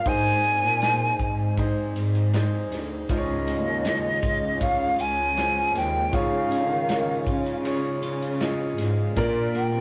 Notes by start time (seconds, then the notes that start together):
0.06 G#2 C4 D#4 G#4 C5 G#5, kick, ride
0.44 ride
0.63 A#2
0.82 D#4 G#4 C5, snare, ride
1.19 G#2, kick, ride
1.58 D#4 G#4 C5, kick, ride
1.96 G#2, ride
2.15 ride
2.34 D#4 G#4 C5, snare, ride
2.72 D2, snare, ride
3.08 C#2 G#2 C#3 C#4 F4 G#4 C5 D#5, kick, ride
3.17 C#5
3.47 G#3, ride
3.67 D#2
3.85 C#4 F4 G#4 D#5, snare, ride
4.22 C#2 F4, kick, ride
4.61 C#4 F4 G#4 C#5 F5, kick, ride
4.99 C#2 F4 G#5, ride
5.36 C#4 F4 G#4 C5, snare, ride
5.75 D#2 G#3 G5, snare, ride
6.12 G#2 C#3 F4 G#4 C#5 F5, kick, ride
6.51 G#3, ride
6.70 D#3
6.88 C#4 F4 G#4 C#5, snare, ride
7.27 C#3 F4, kick, ride
7.46 ride
7.64 C#4 F4 G#4 C#5, ride
8.03 C#3 F4, ride
8.22 ride
8.40 C#4 F4 G#4 D#5, snare, ride
8.78 G#2 G#3, snare, ride
9.16 A#2 A#3 D4 F4 A#4 D5, kick, ride
9.55 A#3 G5, ride
9.74 C3